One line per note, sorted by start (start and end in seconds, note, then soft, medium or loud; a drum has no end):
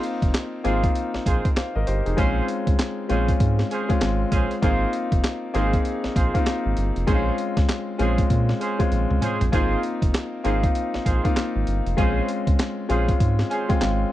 0.00 0.31 A#3 medium
0.00 0.31 C4 medium
0.00 0.31 D#4 medium
0.00 0.32 F4 loud
0.00 closed hi-hat medium
0.22 0.31 F1 medium
0.22 kick medium
0.22 closed hi-hat soft
0.34 snare loud
0.34 clap medium
0.34 closed hi-hat medium
0.64 0.88 G#1 medium
0.64 1.16 A#3 medium
0.64 1.16 C4 medium
0.64 1.16 D#4 medium
0.64 0.86 F4 medium
0.64 1.16 F4 loud
0.64 0.86 G#4 medium
0.64 0.86 C5 medium
0.64 closed hi-hat medium
0.84 kick loud
0.84 closed hi-hat soft
0.95 closed hi-hat medium
1.14 1.19 A#1 soft
1.14 snare medium
1.26 1.40 A#1 medium
1.26 1.47 F4 medium
1.26 1.47 G#4 medium
1.26 1.48 C5 medium
1.26 kick medium
1.26 closed hi-hat medium
1.45 kick medium
1.45 closed hi-hat medium
1.57 1.75 C5 medium
1.57 1.75 F5 medium
1.57 snare loud
1.57 clap medium
1.57 closed hi-hat medium
1.76 1.85 G#1 medium
1.76 1.87 A#4 medium
1.76 1.87 D#5 medium
1.87 2.02 G1 medium
1.87 2.05 G4 medium
1.87 2.05 C5 medium
1.87 closed hi-hat medium
2.06 2.15 F1 loud
2.06 2.35 D#4 medium
2.06 2.35 G#4 medium
2.06 closed hi-hat medium
2.17 2.41 A#1 loud
2.17 2.76 G#3 medium
2.17 2.76 C4 medium
2.17 2.46 C#4 medium
2.17 2.76 C#4 medium
2.17 2.76 F4 medium
2.17 2.47 G#4 medium
2.17 2.47 C5 loud
2.17 kick loud
2.17 closed hi-hat medium
2.48 closed hi-hat medium
2.67 2.76 C#2 medium
2.67 kick medium
2.67 closed hi-hat medium
2.79 snare loud
2.79 clap medium
2.79 closed hi-hat medium
3.09 3.33 A#1 medium
3.09 3.60 G#3 medium
3.09 3.60 C4 medium
3.09 3.31 C#4 medium
3.09 3.61 C#4 medium
3.09 3.61 F4 medium
3.09 3.31 G#4 medium
3.09 3.31 C5 medium
3.09 closed hi-hat medium
3.28 kick medium
3.28 closed hi-hat medium
3.40 3.64 G#2 loud
3.40 kick medium
3.40 closed hi-hat medium
3.59 snare medium
3.71 3.92 C#4 medium
3.71 3.92 G#4 medium
3.71 3.93 C5 medium
3.71 closed hi-hat medium
3.89 4.34 G#3 medium
3.89 4.34 C4 medium
3.89 4.35 C#4 medium
3.89 4.35 F4 medium
3.89 kick medium
3.89 closed hi-hat medium
4.01 4.25 G#1 loud
4.01 snare loud
4.01 clap medium
4.01 closed hi-hat medium
4.32 4.46 A#1 medium
4.32 4.54 C#4 medium
4.32 4.54 G#4 medium
4.32 4.54 C5 medium
4.32 kick medium
4.32 closed hi-hat medium
4.51 closed hi-hat medium
4.62 4.86 G#1 loud
4.62 5.21 A#3 medium
4.62 5.21 C4 medium
4.62 5.21 D#4 medium
4.62 4.91 F4 medium
4.62 5.21 F4 medium
4.62 4.92 G#4 medium
4.62 4.92 C5 loud
4.62 kick loud
4.62 closed hi-hat medium
4.93 closed hi-hat medium
5.12 5.21 F1 medium
5.12 kick medium
5.12 closed hi-hat medium
5.24 snare loud
5.24 clap medium
5.24 closed hi-hat medium
5.54 5.78 G#1 loud
5.54 6.05 A#3 medium
5.54 6.05 C4 medium
5.54 6.06 D#4 medium
5.54 5.76 F4 medium
5.54 5.76 G#4 medium
5.54 6.06 G#4 medium
5.54 5.76 C5 medium
5.54 closed hi-hat medium
5.73 kick medium
5.73 closed hi-hat medium
5.85 closed hi-hat medium
6.04 6.09 A#1 soft
6.04 snare medium
6.16 6.30 A#1 medium
6.16 6.37 F4 medium
6.16 6.37 G#4 medium
6.16 6.38 C5 medium
6.16 kick medium
6.16 closed hi-hat medium
6.34 6.79 A#3 medium
6.34 6.80 C4 medium
6.34 6.80 D#4 medium
6.34 6.80 F4 medium
6.34 kick medium
6.34 closed hi-hat medium
6.47 snare loud
6.47 clap medium
6.47 closed hi-hat medium
6.66 6.75 G#1 medium
6.77 6.92 G1 loud
6.77 closed hi-hat medium
6.96 7.05 F1 medium
6.96 closed hi-hat medium
7.07 7.31 A#1 loud
7.07 7.66 G#3 medium
7.07 7.66 C4 medium
7.07 7.36 C#4 medium
7.07 7.66 C#4 medium
7.07 7.16 D#4 medium
7.07 7.36 G#4 medium
7.07 7.37 C5 loud
7.07 kick loud
7.07 closed hi-hat medium
7.15 7.70 F4 loud
7.38 closed hi-hat medium
7.57 7.66 C#2 medium
7.57 kick medium
7.57 snare medium
7.57 closed hi-hat medium
7.69 snare loud
7.69 clap medium
7.69 closed hi-hat medium
7.99 8.23 A#1 medium
7.99 8.50 G#3 medium
7.99 8.50 C4 medium
7.99 8.21 C#4 medium
7.99 8.51 C#4 medium
7.99 8.51 F4 medium
7.99 8.21 G#4 medium
7.99 8.21 C5 medium
7.99 closed hi-hat medium
8.18 kick medium
8.18 closed hi-hat medium
8.30 8.53 A#2 medium
8.30 kick medium
8.30 closed hi-hat medium
8.49 snare medium
8.60 8.82 C#4 medium
8.60 8.82 G#4 medium
8.60 8.82 C5 medium
8.60 closed hi-hat medium
8.79 9.24 G#3 medium
8.79 9.25 C4 medium
8.79 9.25 C#4 medium
8.79 9.25 F4 medium
8.79 kick medium
8.79 closed hi-hat soft
8.92 9.06 A#1 loud
8.92 closed hi-hat medium
8.92 high tom soft
9.11 9.20 C#2 loud
9.11 mid tom soft
9.22 9.43 C#4 medium
9.22 9.44 G#4 medium
9.22 9.44 C5 medium
9.22 closed hi-hat medium
9.22 mid tom medium
9.41 9.50 A#1 medium
9.41 closed hi-hat medium
9.41 floor tom medium
9.52 9.76 G#1 loud
9.52 10.11 A#3 medium
9.52 10.11 C4 medium
9.52 10.11 D#4 medium
9.52 9.81 F4 medium
9.52 10.11 F4 medium
9.52 9.81 G#4 medium
9.52 9.82 C5 medium
9.52 kick loud
9.52 closed hi-hat medium
9.83 closed hi-hat medium
10.02 10.11 F1 medium
10.02 kick medium
10.02 closed hi-hat medium
10.14 snare loud
10.14 clap medium
10.14 closed hi-hat medium
10.44 10.68 G#1 medium
10.44 10.95 A#3 medium
10.44 10.96 C4 medium
10.44 10.96 D#4 medium
10.44 10.66 F4 medium
10.44 10.96 F4 medium
10.44 10.66 G#4 medium
10.44 10.66 C5 medium
10.44 closed hi-hat medium
10.63 kick medium
10.63 closed hi-hat medium
10.75 closed hi-hat medium
10.94 10.99 A#1 soft
10.94 snare medium
11.05 11.20 A#1 medium
11.05 11.27 F4 medium
11.05 11.27 G#4 medium
11.05 11.27 C5 medium
11.05 kick medium
11.05 closed hi-hat medium
11.24 11.69 A#3 medium
11.24 11.69 C4 medium
11.24 11.70 D#4 medium
11.24 11.70 F4 loud
11.24 kick medium
11.24 closed hi-hat soft
11.37 snare loud
11.37 clap medium
11.37 closed hi-hat medium
11.56 11.64 G#1 medium
11.67 11.82 G1 medium
11.67 closed hi-hat medium
11.86 11.95 F1 medium
11.86 closed hi-hat soft
11.97 12.21 A#1 loud
11.97 12.56 G#3 medium
11.97 12.56 C4 medium
11.97 12.26 C#4 medium
11.97 12.56 C#4 medium
11.97 12.56 F4 loud
11.97 12.26 G#4 medium
11.97 12.27 C5 loud
11.97 kick loud
11.97 closed hi-hat medium
12.28 closed hi-hat medium
12.47 12.56 C#2 medium
12.47 kick medium
12.47 closed hi-hat medium
12.59 snare loud
12.59 clap medium
12.59 closed hi-hat medium
12.89 13.13 A#1 medium
12.89 13.40 G#3 medium
12.89 13.40 C4 medium
12.89 13.11 C#4 medium
12.89 13.40 C#4 medium
12.89 13.41 F4 loud
12.89 13.11 G#4 medium
12.89 13.11 C5 medium
12.89 closed hi-hat medium
13.08 kick medium
13.08 closed hi-hat medium
13.20 13.44 G#2 medium
13.20 kick medium
13.20 closed hi-hat medium
13.39 snare medium
13.50 13.72 C#4 medium
13.50 13.72 G#4 medium
13.50 13.72 C5 medium
13.50 13.68 G#5 medium
13.50 closed hi-hat medium
13.69 14.12 G#3 medium
13.69 14.12 C4 medium
13.69 14.12 C#4 medium
13.69 14.12 F4 loud
13.69 13.80 G5 medium
13.69 kick medium
13.69 closed hi-hat medium
13.81 14.05 G#1 loud
13.81 14.12 F5 medium
13.81 snare medium
13.81 clap medium
13.81 closed hi-hat medium